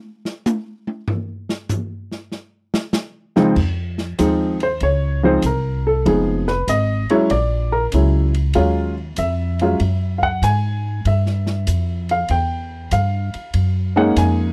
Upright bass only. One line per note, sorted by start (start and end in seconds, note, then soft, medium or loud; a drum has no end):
3.56 4.17 F2 medium
4.19 4.79 D#2 medium
4.81 5.41 C#2 medium
5.43 6.04 C2 medium
6.05 6.66 F1 medium
6.68 7.07 G#1 medium
7.11 muted upright bass stroke soft
7.31 7.91 A#1 medium
7.93 8.53 C#2 medium
8.56 9.16 D#2 medium
9.18 9.78 F2 medium
9.80 10.40 F#2 medium
10.42 11.02 G#2 medium
11.05 11.65 G2 medium
11.67 12.28 F2 medium
12.30 12.90 E2 medium
12.92 13.31 G2 medium
13.35 muted upright bass stroke soft
13.54 14.14 F#2 medium
14.17 14.53 F2 medium